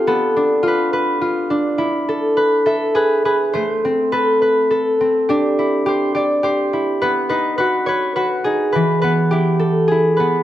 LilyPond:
\new Staff \with { instrumentName = "Harp" } { \time 3/4 \key a \minor \tempo 4 = 104 << { a'4 b'2~ | b'4. a'8 gis'8 b'8 | c''4 b'4 a'4 | g'4 g'8 g'8 g'4 |
b'8 b'8 b'8 cis''8 b'8 gis'8 | b'8 b'8 g'8 a'8 gis'8 b'8 | } \\ { b8 d'8 f'8 b'8 f'8 d'8 | e'8 a'8 b'8 e''8 b'8 gis'8 | a8 c'8 a'8 b'4 c'8 | d'8 e'8 c''8 d''8 c''8 e'8 |
b8 dis'8 fis'8 b'8 fis'8 dis'8 | e8 b8 e'4 e'8 b8 | } >> }